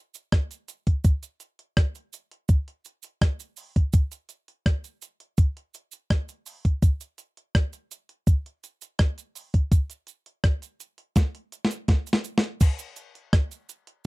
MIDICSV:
0, 0, Header, 1, 2, 480
1, 0, Start_track
1, 0, Tempo, 722892
1, 693, Time_signature, 4, 2, 24, 8
1, 9336, End_track
2, 0, Start_track
2, 0, Title_t, "Drums"
2, 94, Note_on_c, 9, 69, 65
2, 101, Note_on_c, 9, 42, 46
2, 161, Note_off_c, 9, 69, 0
2, 168, Note_off_c, 9, 42, 0
2, 213, Note_on_c, 9, 42, 76
2, 215, Note_on_c, 9, 36, 114
2, 215, Note_on_c, 9, 37, 102
2, 280, Note_off_c, 9, 42, 0
2, 281, Note_off_c, 9, 36, 0
2, 282, Note_off_c, 9, 37, 0
2, 337, Note_on_c, 9, 42, 56
2, 339, Note_on_c, 9, 69, 59
2, 403, Note_off_c, 9, 42, 0
2, 406, Note_off_c, 9, 69, 0
2, 454, Note_on_c, 9, 42, 72
2, 454, Note_on_c, 9, 69, 65
2, 520, Note_off_c, 9, 42, 0
2, 520, Note_off_c, 9, 69, 0
2, 576, Note_on_c, 9, 42, 55
2, 577, Note_on_c, 9, 36, 78
2, 643, Note_off_c, 9, 36, 0
2, 643, Note_off_c, 9, 42, 0
2, 692, Note_on_c, 9, 69, 73
2, 694, Note_on_c, 9, 36, 112
2, 695, Note_on_c, 9, 42, 100
2, 759, Note_off_c, 9, 69, 0
2, 760, Note_off_c, 9, 36, 0
2, 761, Note_off_c, 9, 42, 0
2, 815, Note_on_c, 9, 42, 57
2, 816, Note_on_c, 9, 69, 68
2, 881, Note_off_c, 9, 42, 0
2, 882, Note_off_c, 9, 69, 0
2, 930, Note_on_c, 9, 42, 56
2, 931, Note_on_c, 9, 69, 47
2, 996, Note_off_c, 9, 42, 0
2, 997, Note_off_c, 9, 69, 0
2, 1056, Note_on_c, 9, 42, 44
2, 1122, Note_off_c, 9, 42, 0
2, 1174, Note_on_c, 9, 36, 119
2, 1175, Note_on_c, 9, 37, 115
2, 1176, Note_on_c, 9, 42, 69
2, 1241, Note_off_c, 9, 36, 0
2, 1241, Note_off_c, 9, 37, 0
2, 1242, Note_off_c, 9, 42, 0
2, 1295, Note_on_c, 9, 69, 44
2, 1299, Note_on_c, 9, 42, 45
2, 1361, Note_off_c, 9, 69, 0
2, 1365, Note_off_c, 9, 42, 0
2, 1413, Note_on_c, 9, 69, 65
2, 1420, Note_on_c, 9, 42, 66
2, 1480, Note_off_c, 9, 69, 0
2, 1486, Note_off_c, 9, 42, 0
2, 1537, Note_on_c, 9, 42, 51
2, 1603, Note_off_c, 9, 42, 0
2, 1651, Note_on_c, 9, 69, 74
2, 1652, Note_on_c, 9, 42, 89
2, 1653, Note_on_c, 9, 36, 120
2, 1717, Note_off_c, 9, 69, 0
2, 1719, Note_off_c, 9, 36, 0
2, 1719, Note_off_c, 9, 42, 0
2, 1778, Note_on_c, 9, 42, 50
2, 1845, Note_off_c, 9, 42, 0
2, 1891, Note_on_c, 9, 69, 47
2, 1898, Note_on_c, 9, 42, 67
2, 1957, Note_off_c, 9, 69, 0
2, 1965, Note_off_c, 9, 42, 0
2, 2009, Note_on_c, 9, 69, 67
2, 2021, Note_on_c, 9, 42, 47
2, 2076, Note_off_c, 9, 69, 0
2, 2087, Note_off_c, 9, 42, 0
2, 2134, Note_on_c, 9, 36, 105
2, 2135, Note_on_c, 9, 42, 88
2, 2137, Note_on_c, 9, 37, 100
2, 2201, Note_off_c, 9, 36, 0
2, 2201, Note_off_c, 9, 42, 0
2, 2203, Note_off_c, 9, 37, 0
2, 2255, Note_on_c, 9, 69, 60
2, 2259, Note_on_c, 9, 42, 51
2, 2322, Note_off_c, 9, 69, 0
2, 2326, Note_off_c, 9, 42, 0
2, 2368, Note_on_c, 9, 69, 60
2, 2374, Note_on_c, 9, 46, 70
2, 2434, Note_off_c, 9, 69, 0
2, 2440, Note_off_c, 9, 46, 0
2, 2497, Note_on_c, 9, 36, 82
2, 2497, Note_on_c, 9, 42, 55
2, 2563, Note_off_c, 9, 36, 0
2, 2564, Note_off_c, 9, 42, 0
2, 2609, Note_on_c, 9, 69, 75
2, 2613, Note_on_c, 9, 36, 109
2, 2614, Note_on_c, 9, 42, 104
2, 2675, Note_off_c, 9, 69, 0
2, 2680, Note_off_c, 9, 36, 0
2, 2680, Note_off_c, 9, 42, 0
2, 2733, Note_on_c, 9, 42, 59
2, 2733, Note_on_c, 9, 69, 68
2, 2799, Note_off_c, 9, 69, 0
2, 2800, Note_off_c, 9, 42, 0
2, 2847, Note_on_c, 9, 42, 58
2, 2850, Note_on_c, 9, 69, 46
2, 2914, Note_off_c, 9, 42, 0
2, 2916, Note_off_c, 9, 69, 0
2, 2976, Note_on_c, 9, 42, 44
2, 3042, Note_off_c, 9, 42, 0
2, 3093, Note_on_c, 9, 36, 122
2, 3094, Note_on_c, 9, 37, 118
2, 3095, Note_on_c, 9, 42, 76
2, 3159, Note_off_c, 9, 36, 0
2, 3161, Note_off_c, 9, 37, 0
2, 3162, Note_off_c, 9, 42, 0
2, 3215, Note_on_c, 9, 42, 46
2, 3215, Note_on_c, 9, 69, 47
2, 3281, Note_off_c, 9, 42, 0
2, 3281, Note_off_c, 9, 69, 0
2, 3332, Note_on_c, 9, 69, 70
2, 3337, Note_on_c, 9, 42, 66
2, 3398, Note_off_c, 9, 69, 0
2, 3403, Note_off_c, 9, 42, 0
2, 3454, Note_on_c, 9, 42, 54
2, 3520, Note_off_c, 9, 42, 0
2, 3569, Note_on_c, 9, 69, 74
2, 3572, Note_on_c, 9, 36, 112
2, 3572, Note_on_c, 9, 42, 94
2, 3635, Note_off_c, 9, 69, 0
2, 3639, Note_off_c, 9, 36, 0
2, 3639, Note_off_c, 9, 42, 0
2, 3697, Note_on_c, 9, 42, 52
2, 3763, Note_off_c, 9, 42, 0
2, 3811, Note_on_c, 9, 69, 51
2, 3816, Note_on_c, 9, 42, 72
2, 3877, Note_off_c, 9, 69, 0
2, 3882, Note_off_c, 9, 42, 0
2, 3928, Note_on_c, 9, 69, 62
2, 3939, Note_on_c, 9, 42, 44
2, 3995, Note_off_c, 9, 69, 0
2, 4005, Note_off_c, 9, 42, 0
2, 4052, Note_on_c, 9, 42, 86
2, 4053, Note_on_c, 9, 36, 104
2, 4054, Note_on_c, 9, 37, 108
2, 4118, Note_off_c, 9, 42, 0
2, 4119, Note_off_c, 9, 36, 0
2, 4120, Note_off_c, 9, 37, 0
2, 4174, Note_on_c, 9, 69, 58
2, 4176, Note_on_c, 9, 42, 51
2, 4241, Note_off_c, 9, 69, 0
2, 4242, Note_off_c, 9, 42, 0
2, 4290, Note_on_c, 9, 69, 61
2, 4291, Note_on_c, 9, 46, 68
2, 4356, Note_off_c, 9, 69, 0
2, 4357, Note_off_c, 9, 46, 0
2, 4415, Note_on_c, 9, 36, 80
2, 4415, Note_on_c, 9, 42, 54
2, 4482, Note_off_c, 9, 36, 0
2, 4482, Note_off_c, 9, 42, 0
2, 4531, Note_on_c, 9, 36, 113
2, 4532, Note_on_c, 9, 42, 101
2, 4532, Note_on_c, 9, 69, 70
2, 4598, Note_off_c, 9, 36, 0
2, 4598, Note_off_c, 9, 42, 0
2, 4598, Note_off_c, 9, 69, 0
2, 4652, Note_on_c, 9, 69, 71
2, 4654, Note_on_c, 9, 42, 57
2, 4718, Note_off_c, 9, 69, 0
2, 4720, Note_off_c, 9, 42, 0
2, 4768, Note_on_c, 9, 42, 61
2, 4769, Note_on_c, 9, 69, 47
2, 4835, Note_off_c, 9, 42, 0
2, 4835, Note_off_c, 9, 69, 0
2, 4895, Note_on_c, 9, 42, 44
2, 4962, Note_off_c, 9, 42, 0
2, 5012, Note_on_c, 9, 36, 107
2, 5013, Note_on_c, 9, 37, 110
2, 5014, Note_on_c, 9, 42, 76
2, 5079, Note_off_c, 9, 36, 0
2, 5079, Note_off_c, 9, 37, 0
2, 5080, Note_off_c, 9, 42, 0
2, 5131, Note_on_c, 9, 69, 47
2, 5134, Note_on_c, 9, 42, 49
2, 5198, Note_off_c, 9, 69, 0
2, 5200, Note_off_c, 9, 42, 0
2, 5253, Note_on_c, 9, 69, 68
2, 5255, Note_on_c, 9, 42, 71
2, 5320, Note_off_c, 9, 69, 0
2, 5321, Note_off_c, 9, 42, 0
2, 5373, Note_on_c, 9, 42, 50
2, 5439, Note_off_c, 9, 42, 0
2, 5491, Note_on_c, 9, 36, 121
2, 5492, Note_on_c, 9, 42, 93
2, 5492, Note_on_c, 9, 69, 76
2, 5558, Note_off_c, 9, 36, 0
2, 5558, Note_off_c, 9, 42, 0
2, 5558, Note_off_c, 9, 69, 0
2, 5618, Note_on_c, 9, 42, 53
2, 5684, Note_off_c, 9, 42, 0
2, 5734, Note_on_c, 9, 69, 50
2, 5735, Note_on_c, 9, 42, 73
2, 5801, Note_off_c, 9, 69, 0
2, 5802, Note_off_c, 9, 42, 0
2, 5853, Note_on_c, 9, 69, 62
2, 5858, Note_on_c, 9, 42, 48
2, 5919, Note_off_c, 9, 69, 0
2, 5924, Note_off_c, 9, 42, 0
2, 5968, Note_on_c, 9, 42, 80
2, 5970, Note_on_c, 9, 37, 118
2, 5972, Note_on_c, 9, 36, 110
2, 6035, Note_off_c, 9, 42, 0
2, 6037, Note_off_c, 9, 37, 0
2, 6038, Note_off_c, 9, 36, 0
2, 6094, Note_on_c, 9, 42, 54
2, 6098, Note_on_c, 9, 69, 59
2, 6161, Note_off_c, 9, 42, 0
2, 6165, Note_off_c, 9, 69, 0
2, 6211, Note_on_c, 9, 46, 79
2, 6214, Note_on_c, 9, 69, 67
2, 6278, Note_off_c, 9, 46, 0
2, 6280, Note_off_c, 9, 69, 0
2, 6334, Note_on_c, 9, 36, 75
2, 6334, Note_on_c, 9, 42, 60
2, 6400, Note_off_c, 9, 42, 0
2, 6401, Note_off_c, 9, 36, 0
2, 6451, Note_on_c, 9, 36, 111
2, 6452, Note_on_c, 9, 42, 103
2, 6455, Note_on_c, 9, 69, 72
2, 6518, Note_off_c, 9, 36, 0
2, 6518, Note_off_c, 9, 42, 0
2, 6521, Note_off_c, 9, 69, 0
2, 6571, Note_on_c, 9, 42, 60
2, 6577, Note_on_c, 9, 69, 70
2, 6638, Note_off_c, 9, 42, 0
2, 6643, Note_off_c, 9, 69, 0
2, 6685, Note_on_c, 9, 42, 62
2, 6693, Note_on_c, 9, 69, 48
2, 6752, Note_off_c, 9, 42, 0
2, 6760, Note_off_c, 9, 69, 0
2, 6813, Note_on_c, 9, 42, 46
2, 6880, Note_off_c, 9, 42, 0
2, 6931, Note_on_c, 9, 36, 118
2, 6931, Note_on_c, 9, 37, 110
2, 6932, Note_on_c, 9, 42, 74
2, 6997, Note_off_c, 9, 36, 0
2, 6997, Note_off_c, 9, 37, 0
2, 6998, Note_off_c, 9, 42, 0
2, 7052, Note_on_c, 9, 42, 50
2, 7056, Note_on_c, 9, 69, 49
2, 7119, Note_off_c, 9, 42, 0
2, 7122, Note_off_c, 9, 69, 0
2, 7172, Note_on_c, 9, 69, 68
2, 7173, Note_on_c, 9, 42, 68
2, 7238, Note_off_c, 9, 69, 0
2, 7239, Note_off_c, 9, 42, 0
2, 7290, Note_on_c, 9, 42, 47
2, 7357, Note_off_c, 9, 42, 0
2, 7408, Note_on_c, 9, 42, 93
2, 7410, Note_on_c, 9, 36, 115
2, 7411, Note_on_c, 9, 69, 78
2, 7414, Note_on_c, 9, 38, 57
2, 7475, Note_off_c, 9, 42, 0
2, 7476, Note_off_c, 9, 36, 0
2, 7478, Note_off_c, 9, 69, 0
2, 7481, Note_off_c, 9, 38, 0
2, 7534, Note_on_c, 9, 42, 54
2, 7601, Note_off_c, 9, 42, 0
2, 7651, Note_on_c, 9, 42, 78
2, 7655, Note_on_c, 9, 69, 47
2, 7717, Note_off_c, 9, 42, 0
2, 7721, Note_off_c, 9, 69, 0
2, 7733, Note_on_c, 9, 38, 77
2, 7774, Note_on_c, 9, 69, 65
2, 7775, Note_on_c, 9, 42, 47
2, 7799, Note_off_c, 9, 38, 0
2, 7840, Note_off_c, 9, 69, 0
2, 7842, Note_off_c, 9, 42, 0
2, 7889, Note_on_c, 9, 42, 84
2, 7891, Note_on_c, 9, 36, 114
2, 7894, Note_on_c, 9, 38, 69
2, 7956, Note_off_c, 9, 42, 0
2, 7957, Note_off_c, 9, 36, 0
2, 7960, Note_off_c, 9, 38, 0
2, 8012, Note_on_c, 9, 69, 59
2, 8014, Note_on_c, 9, 42, 55
2, 8054, Note_on_c, 9, 38, 101
2, 8079, Note_off_c, 9, 69, 0
2, 8080, Note_off_c, 9, 42, 0
2, 8120, Note_off_c, 9, 38, 0
2, 8129, Note_on_c, 9, 69, 66
2, 8130, Note_on_c, 9, 42, 79
2, 8195, Note_off_c, 9, 69, 0
2, 8197, Note_off_c, 9, 42, 0
2, 8218, Note_on_c, 9, 38, 93
2, 8257, Note_on_c, 9, 42, 60
2, 8284, Note_off_c, 9, 38, 0
2, 8324, Note_off_c, 9, 42, 0
2, 8369, Note_on_c, 9, 69, 84
2, 8372, Note_on_c, 9, 36, 121
2, 8374, Note_on_c, 9, 42, 110
2, 8374, Note_on_c, 9, 49, 109
2, 8436, Note_off_c, 9, 69, 0
2, 8438, Note_off_c, 9, 36, 0
2, 8440, Note_off_c, 9, 49, 0
2, 8441, Note_off_c, 9, 42, 0
2, 8490, Note_on_c, 9, 69, 79
2, 8493, Note_on_c, 9, 42, 61
2, 8557, Note_off_c, 9, 69, 0
2, 8559, Note_off_c, 9, 42, 0
2, 8606, Note_on_c, 9, 69, 50
2, 8608, Note_on_c, 9, 42, 65
2, 8672, Note_off_c, 9, 69, 0
2, 8674, Note_off_c, 9, 42, 0
2, 8733, Note_on_c, 9, 42, 46
2, 8799, Note_off_c, 9, 42, 0
2, 8851, Note_on_c, 9, 36, 123
2, 8851, Note_on_c, 9, 37, 127
2, 8852, Note_on_c, 9, 42, 83
2, 8917, Note_off_c, 9, 36, 0
2, 8918, Note_off_c, 9, 37, 0
2, 8919, Note_off_c, 9, 42, 0
2, 8973, Note_on_c, 9, 42, 50
2, 8973, Note_on_c, 9, 69, 49
2, 9040, Note_off_c, 9, 42, 0
2, 9040, Note_off_c, 9, 69, 0
2, 9091, Note_on_c, 9, 69, 72
2, 9092, Note_on_c, 9, 42, 79
2, 9158, Note_off_c, 9, 69, 0
2, 9159, Note_off_c, 9, 42, 0
2, 9211, Note_on_c, 9, 42, 56
2, 9277, Note_off_c, 9, 42, 0
2, 9336, End_track
0, 0, End_of_file